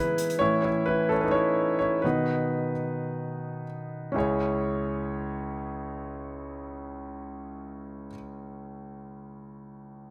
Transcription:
Already playing: grand piano E3 G#3 B3 D#4 E4 G#4 B4
0.18 closed hi-hat
0.30 closed hi-hat
0.39 grand piano A2 E3 C#4 E4 C#5
0.62 grand piano E4 C#5
0.86 grand piano E4 B4
1.09 grand piano C#4 A4
1.21 grand piano D#4 B4
1.31 grand piano E4 C#5
1.79 grand piano E4 C#5
2.02 grand piano B2 D#3 B3 D#4 B4
4.12 grand piano C#2 C#4 E4
4.16 grand piano G#4 C#5

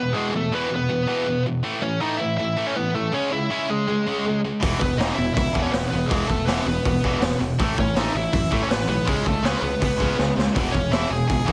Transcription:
Already playing: distorted electric guitar E2 B2, lead electric guitar B3 B4
0.13 distorted electric guitar E2 B2 E3, lead electric guitar G#3 G#4
0.34 distorted electric guitar E2 B2, lead electric guitar A3 A4
0.52 distorted electric guitar E2 B2 E3, lead electric guitar B3 B4
0.70 distorted electric guitar E2 B2, lead electric guitar B3
0.76 lead electric guitar B4
0.89 distorted electric guitar E2 B2
1.07 distorted electric guitar E2 B2 E3
1.27 distorted electric guitar E2 B2
1.46 distorted electric guitar E2 B2
1.63 distorted electric guitar A2 E3 A3
1.82 distorted electric guitar A2 E3, lead electric guitar C#4 C#5
2.00 distorted electric guitar A2 E3 A3, lead electric guitar D#4 D#5
2.17 distorted electric guitar A2 E3, lead electric guitar E4 E5
2.38 distorted electric guitar A2 E3, lead electric guitar E4 E5
2.57 distorted electric guitar A2 E3 A3
2.66 lead electric guitar C#4 C#5
2.76 distorted electric guitar A2 E3, lead electric guitar B3 B4
2.94 distorted electric guitar A2 E3, lead electric guitar A3 A4
3.12 distorted electric guitar C#3 G#3 C#4, lead electric guitar C#4 C#5
3.31 distorted electric guitar C#3 G#3, lead electric guitar E4 E5
3.50 distorted electric guitar C#3 G#3 C#4, lead electric guitar E4 E5
3.69 distorted electric guitar C#3 G#3, lead electric guitar G#3 G#4
3.88 distorted electric guitar C#3 G#3
4.07 distorted electric guitar C#3 G#3 C#4
4.25 distorted electric guitar C#3 G#3
4.45 distorted electric guitar C#3 G#3
4.62 picked electric bass E1, distorted electric guitar E2 B2 E3, kick, open hi-hat
4.80 picked electric bass E1, distorted electric guitar E2 B2, lead electric guitar B3 B4, kick
4.98 picked electric bass E1, distorted electric guitar E2 B2 E3, lead electric guitar D#4 D#5, snare, open hi-hat
5.14 picked electric bass E1, lead electric guitar E4 E5
5.18 distorted electric guitar E2 B2
5.34 picked electric bass C#2, distorted electric guitar E2 B2, lead electric guitar E4 E5, kick, open hi-hat
5.55 picked electric bass E2, distorted electric guitar E2 B2 E3, kick
5.62 lead electric guitar C#4 C#5
5.71 picked electric bass E1, distorted electric guitar E2 B2, lead electric guitar B3 B4, snare, open hi-hat
5.89 lead electric guitar B3 B4
5.93 picked electric bass E1, distorted electric guitar E2 B2
6.06 distorted electric guitar E2, lead electric guitar G#3 G#4
6.11 picked electric bass E1, distorted electric guitar B2 E3, kick, open hi-hat
6.27 picked electric bass E1, lead electric guitar A3 A4, kick
6.31 distorted electric guitar E2 B2
6.45 picked electric bass E1, distorted electric guitar E2, lead electric guitar B3 B4, snare, open hi-hat
6.50 distorted electric guitar B2 E3
6.66 picked electric bass E1, distorted electric guitar E2 B2, lead electric guitar B4
6.72 lead electric guitar B3
6.85 picked electric bass E1, distorted electric guitar E2 B2, kick, open hi-hat
7.04 picked electric bass E1, distorted electric guitar E2 B2 E3, kick
7.22 picked electric bass E1, distorted electric guitar E2 B2, snare, open hi-hat
7.41 picked electric bass E1, distorted electric guitar E2 B2
7.59 picked electric bass A1, distorted electric guitar A2 E3 A3, kick, open hi-hat
7.78 picked electric bass A1, distorted electric guitar A2 E3, lead electric guitar C#4 C#5, kick
7.96 picked electric bass A1, distorted electric guitar A2 E3 A3, lead electric guitar D#4 D#5, snare, open hi-hat
8.14 picked electric bass A1, distorted electric guitar A2 E3, lead electric guitar E4 E5
8.33 picked electric bass F#2, distorted electric guitar A2 E3, lead electric guitar E4 E5, kick, open hi-hat
8.51 distorted electric guitar A2 E3 A3, picked electric bass A2, kick
8.63 lead electric guitar C#4 C#5
8.70 picked electric bass A1, distorted electric guitar A2 E3, lead electric guitar B3 B4, snare, open hi-hat
8.88 picked electric bass B1, distorted electric guitar A2 E3, lead electric guitar B3 B4
9.07 picked electric bass C#2, distorted electric guitar C#3 G#3 C#4, lead electric guitar G#3 G#4, kick, open hi-hat
9.25 picked electric bass C#2, distorted electric guitar C#3 G#3, lead electric guitar A3 A4, kick
9.43 picked electric bass C#2, distorted electric guitar C#3 G#3 C#4, lead electric guitar B3 B4, snare, open hi-hat
9.62 picked electric bass C#2, distorted electric guitar C#3 G#3, lead electric guitar B3 B4
9.82 picked electric bass C#2, distorted electric guitar C#3 G#3, kick, open hi-hat
9.98 picked electric bass C#2, distorted electric guitar C#3 G#3, overdriven electric guitar C#4, kick
10.02 distorted electric guitar C#4
10.19 picked electric bass C#2, distorted electric guitar C#3 G#3, snare
10.37 picked electric bass C#2, distorted electric guitar C#3 G#3, snare
10.55 picked electric bass E1, distorted electric guitar E2 B2 E3, kick, open hi-hat
10.72 picked electric bass E1, distorted electric guitar E2 B2, lead electric guitar C#4 C#5, kick
10.92 picked electric bass E1, distorted electric guitar E2 B2 E3, lead electric guitar E4 E5, snare, open hi-hat
11.10 picked electric bass E1, distorted electric guitar E2 B2, lead electric guitar G#4 G#5
11.28 picked electric bass C#2, distorted electric guitar E2 B2, lead electric guitar G#4 G#5, kick, open hi-hat
11.46 distorted electric guitar E2 B2 E3, picked electric bass E2, kick

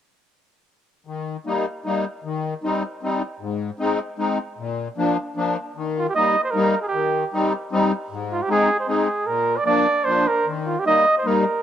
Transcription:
1.06 accordion D#3
1.46 accordion G3 A#3 D#4
1.85 accordion G3 A#3 D#4
2.24 accordion D#3
2.63 accordion G3 C4 D#4
3.03 accordion G3 C4 D#4
3.40 accordion G#2
3.79 accordion G#3 C4 D#4
4.18 accordion G#3 C4 D#4
4.58 accordion A#2
4.97 accordion F3 A#3 D4
5.37 accordion F3 A#3 D4
5.76 accordion D#3
5.99 flugelhorn F4
6.09 flugelhorn G4
6.15 accordion G3 A#3 D#4, flugelhorn D#5
6.44 flugelhorn C5
6.51 flugelhorn A#4
6.55 accordion G3 A#3 D#4
6.82 flugelhorn G#4
6.87 flugelhorn G4
6.94 accordion D#3
7.33 accordion G3 C4 D#4
7.72 accordion G3 C4 D#4
8.10 accordion G#2
8.32 flugelhorn F4
8.42 flugelhorn G4
8.49 accordion G#3 C4 D#4, flugelhorn G#4
8.80 flugelhorn C5
8.87 accordion G#3 C4 D#4, flugelhorn G#4
9.27 accordion A#2, flugelhorn A#4
9.57 flugelhorn D5
9.66 accordion F3 A#3 D4, flugelhorn D5
10.05 accordion F3 A#3 D4, flugelhorn C5
10.27 flugelhorn A#4
10.46 accordion D#3
10.66 flugelhorn F4
10.79 flugelhorn G4
10.86 accordion G3 A#3 D#4, flugelhorn D#5
11.18 flugelhorn C5
11.25 accordion G3 A#3 D#4, flugelhorn A#4

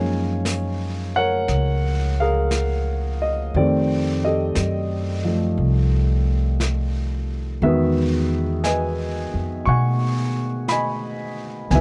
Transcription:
Already playing: upright bass F#2, grand piano F3 G#3 A#3 C#4 D#4 C#5 F5 G#5
0.45 brush sweep, snare, hi-hat pedal
1.16 grand piano A#4 C#5 F#5
1.48 upright bass C#2, brush sweep, snare
2.20 grand piano G#4 A#4 F5
2.51 brush sweep, snare, hi-hat pedal
3.22 grand piano D#5
3.53 upright bass F2, grand piano D#3 A3 C4 G4 A4 D5, brush sweep
4.24 grand piano G4 A4 D#5
4.55 upright bass F#2, brush sweep, snare, hi-hat pedal
5.25 grand piano F3 A3
5.57 upright bass C2, brush sweep
6.60 brush sweep, snare, hi-hat pedal
7.62 upright bass E2, grand piano D#3 G#3 B3 F#4 G#4 B4 E5, brush sweep
8.64 grand piano B4 D#5 G#5, brush sweep, snare, hi-hat pedal
9.34 upright bass F2
9.65 upright bass B2, grand piano F#5 G#5 C#6, brush sweep
10.68 grand piano D#5 G#5 B5, brush sweep, snare, hi-hat pedal
11.70 upright bass C#2, grand piano D#3 E3 F#3 B3 G#5, brush sweep, snare
11.75 grand piano B4 E5

